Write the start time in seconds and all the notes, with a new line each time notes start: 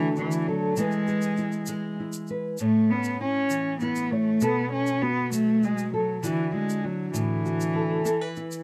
Already playing: D3 E3 A3 D4 F#4 A4
0.16 E3 D4, shaker
0.32 shaker
0.47 F#3 A4
0.77 E3 G#3 E4 G#4 B4, shaker
0.92 shaker
1.07 G#4, shaker
1.22 shaker
1.37 E4, shaker
1.52 shaker
1.66 G#3 G#4, shaker
2.00 E4
2.13 shaker
2.27 B4, shaker
2.58 A2 A3 C#5, shaker
2.90 B3 C#4
3.04 shaker
3.21 C#4 E4
3.50 E3, shaker
3.80 B3 E4, shaker
3.96 shaker
4.11 A3 C#5
4.41 B2 B3 A4, shaker
4.72 C#4
4.87 shaker
5.02 B3 F#4
5.32 F#3 A3, shaker
5.63 G#3 F#4, shaker
5.78 shaker
5.94 F#3 A4
6.23 D3 E3 E4 F#4, shaker
6.53 G#3 E4
6.70 shaker
6.84 F#3 F#4
7.14 A2 E3, shaker
7.45 F#4, shaker
7.61 shaker
7.75 A4
8.05 E3 A4, shaker
8.21 B4
8.36 E4, shaker
8.52 shaker